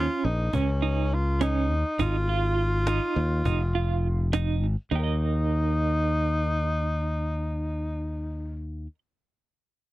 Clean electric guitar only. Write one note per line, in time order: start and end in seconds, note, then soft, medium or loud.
0.00 0.27 C#4 medium
0.54 0.69 C#4 medium
0.82 1.14 D#4 medium
1.41 1.73 C#4 medium
2.00 2.15 D#4 medium
2.29 2.61 F4 medium
2.88 3.19 D#4 medium
3.46 3.61 D#4 medium
3.75 4.07 F4 medium
4.34 4.65 D#4 medium
4.91 8.86 D#4 medium
4.95 5.03 G4 medium
5.00 8.94 A#4 medium
5.00 8.98 D#5 medium